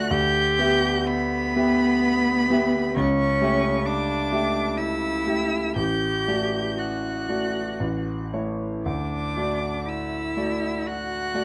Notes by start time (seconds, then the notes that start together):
Already playing: A3 F#4 D5 F#6
0.10 D2 G4 G6
0.59 B3 G4 E5
1.07 B3 B5
1.56 B3 G4 E5
2.50 B3 G4 E5
2.95 C#2 C#4 C#6
3.41 A3 G4 E5
3.86 D4 D6
4.32 A3 G4 E5
4.77 E4 E6
5.26 A3 G4 E5
5.76 A1 G4 G6
6.27 A3 F#4 D5
6.78 F#4 F#6
7.29 A3 F#4 D5
7.80 A1
8.33 A3 E4 C#5
8.85 D2 D4 D6
9.37 A3 F#4 D5
9.86 E4 E6
10.36 A3 F#4 D5
10.86 F#4 F#6
11.34 A3 F#4 D5